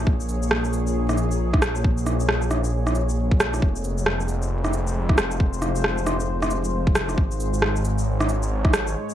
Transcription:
Already playing: detuned saw bass A#1, ambient pad A#3 G#4 C#5
0.07 kick
0.20 shaker
0.29 cabasa
0.43 shaker
0.51 cross-stick
0.65 shaker
0.73 cabasa
0.87 shaker
1.09 cross-stick, shaker
1.17 cabasa
1.31 shaker
1.53 kick, cross-stick
1.62 cross-stick, cabasa
1.76 shaker
1.84 kick
1.98 shaker
2.07 cross-stick, cabasa
2.20 shaker
2.29 cross-stick
2.42 shaker
2.51 cross-stick, cabasa
2.64 shaker
2.87 cross-stick, shaker
2.95 cabasa
3.09 shaker
3.31 kick
3.40 cross-stick, cabasa
3.54 cross-stick, shaker
3.62 detuned saw bass F1, ambient pad G#3 F4 C5, kick
3.76 shaker
3.84 cabasa
3.98 shaker
4.06 cross-stick
4.20 shaker
4.28 cabasa
4.42 shaker
4.64 cross-stick, shaker
4.73 cabasa
4.87 shaker
5.09 kick, cross-stick
5.18 cross-stick, cabasa
5.31 shaker
5.40 kick
5.53 shaker
5.62 cross-stick, cabasa
5.76 shaker
5.84 cross-stick
5.98 shaker
6.07 cross-stick, cabasa
6.20 shaker
6.42 cross-stick, shaker
6.51 cabasa
6.64 shaker
6.87 kick
6.95 cross-stick, cabasa
7.09 cross-stick, shaker
7.17 detuned saw bass G#1, ambient pad D#4 C#5, kick
7.32 shaker
7.40 cabasa
7.54 shaker
7.62 cross-stick
7.76 shaker
7.85 cabasa
7.99 shaker
8.20 cross-stick, shaker
8.29 cabasa
8.43 shaker
8.65 kick, cross-stick
8.73 cross-stick, cabasa
8.87 shaker
9.10 shaker

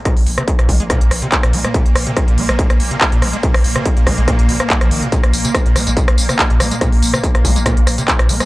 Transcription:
Already playing: synth drone A#2 A#3
0.05 acid bass A#2, kick, cross-stick, closed hi-hat
0.17 sub bass A#1, open hi-hat
0.26 sub bass A#1, open hi-hat
0.38 acid bass C3, cross-stick, closed hi-hat
0.48 kick, closed hi-hat
0.59 sub bass A#1, acid bass A#2, cross-stick, closed hi-hat
0.69 sub bass A#1, acid bass A#3, kick, open hi-hat
0.80 sub bass A#1, acid bass G#3, closed hi-hat
0.90 acid bass A#2, kick, cross-stick, closed hi-hat
1.01 sub bass A#1, closed hi-hat
1.11 sub bass A#1, cross-stick, open hi-hat
1.22 acid bass C3, closed hi-hat
1.32 kick, clap, closed hi-hat
1.43 sub bass A#1, acid bass A#2, cross-stick, closed hi-hat
1.53 sub bass A#1, acid bass A#3, open hi-hat
1.64 acid bass G#3, cross-stick, closed hi-hat
1.74 acid bass A#2, kick, closed hi-hat
1.85 sub bass A#1, closed hi-hat
1.95 sub bass A#1, cross-stick, open hi-hat
2.07 acid bass C3, closed hi-hat
2.17 kick, cross-stick, closed hi-hat
2.28 sub bass A#1, acid bass A#2, closed hi-hat
2.38 sub bass A#1, acid bass A#3, open hi-hat
2.49 sub bass A#1, acid bass G#3, cross-stick, closed hi-hat
2.59 acid bass A#2, kick, closed hi-hat
2.70 sub bass A#1, cross-stick, closed hi-hat
2.80 sub bass A#1, open hi-hat
2.91 acid bass C3, closed hi-hat
3.01 kick, cross-stick, clap, closed hi-hat
3.12 sub bass A#1, acid bass A#2, closed hi-hat
3.22 sub bass A#1, acid bass A#3, cross-stick, open hi-hat
3.33 acid bass G#3, closed hi-hat
3.43 acid bass A#2, kick, closed hi-hat
3.54 sub bass A#1, cross-stick, open hi-hat
3.64 sub bass A#1, open hi-hat
3.76 acid bass C3, cross-stick, closed hi-hat
3.86 kick, closed hi-hat
3.97 sub bass A#1, acid bass A#2, closed hi-hat
4.07 sub bass A#1, acid bass A#3, kick, cross-stick, open hi-hat
4.18 sub bass A#1, acid bass G#3, closed hi-hat
4.28 acid bass A#2, kick, cross-stick, closed hi-hat
4.39 sub bass A#1, closed hi-hat
4.49 sub bass A#1, acid bass C3, open hi-hat
4.60 acid bass A#3, cross-stick, closed hi-hat
4.70 acid bass A#3, kick, clap, closed hi-hat
4.81 sub bass A#1, acid bass F3, cross-stick, closed hi-hat
4.91 sub bass A#1, acid bass D#3, open hi-hat
5.02 acid bass A#2, closed hi-hat
5.12 acid bass A#2, kick, closed hi-hat, tambourine
5.23 sub bass A#1, cross-stick, closed hi-hat
5.33 sub bass A#1, open hi-hat, tambourine
5.45 acid bass C3, closed hi-hat, tambourine
5.55 kick, cross-stick, closed hi-hat, tambourine
5.66 sub bass A#1, acid bass A#2, closed hi-hat
5.76 sub bass A#1, acid bass A#3, cross-stick, open hi-hat, tambourine
5.87 sub bass A#1, acid bass G#3, closed hi-hat, tambourine
5.97 acid bass A#2, kick, closed hi-hat, tambourine
6.08 sub bass A#1, cross-stick, closed hi-hat
6.18 sub bass A#1, open hi-hat, tambourine
6.29 acid bass C3, cross-stick, closed hi-hat, tambourine
6.39 kick, clap, closed hi-hat, tambourine
6.50 sub bass A#1, acid bass A#2, closed hi-hat
6.60 sub bass A#1, acid bass A#3, cross-stick, open hi-hat, tambourine
6.71 acid bass G#3, closed hi-hat, tambourine
6.81 acid bass A#2, kick, cross-stick, closed hi-hat, tambourine
6.92 sub bass A#1, open hi-hat
7.02 sub bass A#1, open hi-hat, tambourine
7.14 acid bass C3, cross-stick, tambourine
7.24 kick, closed hi-hat, tambourine
7.35 sub bass A#1, acid bass A#2, cross-stick, closed hi-hat
7.45 sub bass A#1, acid bass A#3, kick, open hi-hat, tambourine
7.56 sub bass A#1, acid bass G#3, closed hi-hat, tambourine
7.66 acid bass A#2, kick, cross-stick, closed hi-hat, tambourine
7.77 sub bass A#1, closed hi-hat
7.87 sub bass A#1, cross-stick, open hi-hat, tambourine
7.98 acid bass C3, closed hi-hat, tambourine
8.08 kick, clap, closed hi-hat, tambourine
8.19 sub bass A#1, acid bass A#2, cross-stick, closed hi-hat
8.29 sub bass A#1, acid bass A#3, open hi-hat, tambourine
8.40 acid bass G#3, cross-stick, closed hi-hat, tambourine

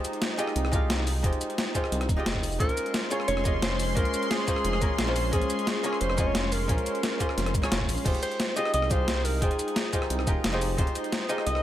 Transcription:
Already playing: hollow-body jazz guitar G#3 D#4 F4 G4 C5, analog synth pad D#4
0.05 closed hi-hat, shaker
0.13 closed hi-hat
0.22 snare, closed hi-hat
0.38 hollow-body jazz guitar G#3 D#4 F4 G4 D#5, closed hi-hat, shaker
0.47 cross-stick
0.56 detuned saw bass C2, closed hi-hat
0.65 cross-stick
0.72 hollow-body jazz guitar G#3 D#4 F4 G4 F5, kick, closed hi-hat, shaker
0.90 snare, closed hi-hat
1.07 open hi-hat, shaker
1.23 detuned saw bass F1, hollow-body jazz guitar G#3 D#4 F4 G4 C5, kick, closed hi-hat
1.33 closed hi-hat
1.41 closed hi-hat, shaker
1.50 closed hi-hat
1.58 snare, closed hi-hat
1.74 hollow-body jazz guitar G#3 D#4 F4 G4 C5, kick, closed hi-hat, shaker
1.84 cross-stick
1.92 detuned saw bass C2, closed hi-hat
2.01 cross-stick, closed hi-hat
2.09 detuned saw bass D#1, kick, closed hi-hat, shaker
2.16 hollow-body jazz guitar G#3 D#4 F4 G4 D#5
2.26 detuned saw bass F1, snare, closed hi-hat
2.35 kick
2.43 open hi-hat, shaker
2.52 shaker
2.59 detuned saw bass A#1, analog synth pad G#3 C#4 C6, hollow-body jazz guitar A#3 C#4 F4 G#4 C5, alto saxophone A#4, kick, closed hi-hat
2.69 closed hi-hat
2.77 closed hi-hat, shaker
2.86 closed hi-hat
2.94 snare, closed hi-hat
3.10 hollow-body jazz guitar A#3 C#4 F4 G#4 C#5, closed hi-hat, shaker
3.20 cross-stick
3.28 detuned saw bass F1, alto saxophone C#5, closed hi-hat
3.37 cross-stick
3.44 hollow-body jazz guitar A#3 C#4 F4 G#4 D#5, kick, closed hi-hat, shaker
3.62 alto saxophone C5, snare, closed hi-hat
3.80 open hi-hat, shaker
3.95 detuned saw bass A#1, hollow-body jazz guitar A#3 C#4 F4 G#4 C5, alto saxophone A#4, kick, closed hi-hat
4.05 closed hi-hat
4.14 closed hi-hat, shaker
4.23 closed hi-hat
4.31 alto saxophone G#4, snare, closed hi-hat
4.47 hollow-body jazz guitar A#3 C#4 F4 G#4 C5, kick, closed hi-hat, shaker
4.56 cross-stick
4.64 detuned saw bass F1, closed hi-hat
4.73 cross-stick
4.81 detuned saw bass G#1, hollow-body jazz guitar A#3 C#4 F4 G#4 A#4, kick, closed hi-hat, shaker
4.99 detuned saw bass A#1, snare, closed hi-hat
5.07 hollow-body jazz guitar A#3 C#4 F4 G#4 C5
5.16 open hi-hat, shaker
5.31 detuned saw bass A#1, hollow-body jazz guitar A#3 C#4 F4 G#4 C5, alto saxophone G#4, kick, closed hi-hat
5.42 closed hi-hat
5.50 closed hi-hat, shaker
5.59 closed hi-hat
5.67 snare, closed hi-hat
5.83 hollow-body jazz guitar A#3 C#4 F4 G#4 C#5, closed hi-hat, shaker
5.93 cross-stick
6.01 detuned saw bass F1, alto saxophone C5, closed hi-hat
6.10 cross-stick
6.17 hollow-body jazz guitar A#3 C#4 F4 G#4 D#5, kick, closed hi-hat, shaker
6.27 alto saxophone C#5
6.35 snare, closed hi-hat
6.52 alto saxophone A#4, open hi-hat, shaker
6.68 detuned saw bass A#1, hollow-body jazz guitar A#3 C#4 F4 G#4 C5, kick, closed hi-hat
6.78 closed hi-hat
6.86 closed hi-hat, shaker
6.95 closed hi-hat
7.03 snare, closed hi-hat
7.19 hollow-body jazz guitar A#3 C#4 F4 G#4 C5, kick, closed hi-hat, shaker
7.29 cross-stick
7.37 detuned saw bass F1, snare, closed hi-hat
7.46 cross-stick, closed hi-hat
7.54 detuned saw bass G#1, kick, closed hi-hat, shaker
7.62 hollow-body jazz guitar A#3 C#4 F4 G#4 C#5, cross-stick, shaker
7.72 detuned saw bass F1, snare, closed hi-hat
7.80 kick
7.88 detuned saw bass A#1, open hi-hat, shaker
7.97 shaker
8.04 detuned saw bass F1, hollow-body jazz guitar G#3 D#4 F4 G4 C5, analog synth pad D#4, kick, closed hi-hat, crash
8.15 closed hi-hat
8.23 alto saxophone C5, closed hi-hat, shaker
8.31 closed hi-hat
8.40 snare, closed hi-hat
8.56 hollow-body jazz guitar G#3 D#4 F4 G4 D#5, alto saxophone D#5, closed hi-hat, shaker
8.65 cross-stick
8.74 detuned saw bass C2, alto saxophone D#5, closed hi-hat
8.82 cross-stick
8.90 hollow-body jazz guitar G#3 D#4 F4 G4 F5, alto saxophone C5, kick, closed hi-hat, shaker
9.08 snare, closed hi-hat
9.25 alto saxophone A#4, open hi-hat, shaker
9.41 detuned saw bass F1, hollow-body jazz guitar G#3 D#4 F4 C5 G5, alto saxophone G#4, kick, closed hi-hat
9.51 closed hi-hat
9.59 closed hi-hat, shaker
9.68 closed hi-hat
9.76 snare, closed hi-hat
9.92 hollow-body jazz guitar G#3 D#4 F4 G4 C5, kick, closed hi-hat, shaker
10.02 cross-stick
10.10 detuned saw bass C2, closed hi-hat
10.19 cross-stick
10.27 detuned saw bass D#1, hollow-body jazz guitar G#3 D#4 F4 G4 A#4, kick, closed hi-hat, shaker
10.44 detuned saw bass F1, snare, closed hi-hat
10.52 hollow-body jazz guitar G#3 D#4 F4 G4 C5
10.61 open hi-hat, shaker
10.77 detuned saw bass F1, hollow-body jazz guitar G#3 D#4 F4 G4 C5, alto saxophone C5, kick, closed hi-hat
10.87 closed hi-hat
10.95 closed hi-hat, shaker
11.04 closed hi-hat
11.12 snare, closed hi-hat
11.28 hollow-body jazz guitar G#3 D#4 F4 G4 D#5, closed hi-hat, shaker
11.38 cross-stick
11.46 detuned saw bass C2, alto saxophone D#5, closed hi-hat
11.55 cross-stick

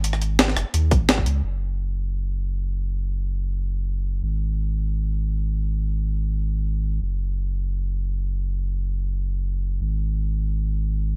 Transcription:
Already playing: sub bass G#1
0.04 closed hi-hat
0.13 cross-stick
0.22 closed hi-hat
0.39 snare, closed hi-hat
0.48 snare
0.56 sub bass F#1, cross-stick, closed hi-hat
0.73 sub bass D#2, closed hi-hat
0.91 sub bass G#1, kick, closed hi-hat
1.09 snare, closed hi-hat
1.18 kick
1.26 sub bass C#2, closed hi-hat
1.44 sub bass F#1
4.23 sub bass G#1
7.02 sub bass F#1
9.81 sub bass G#1

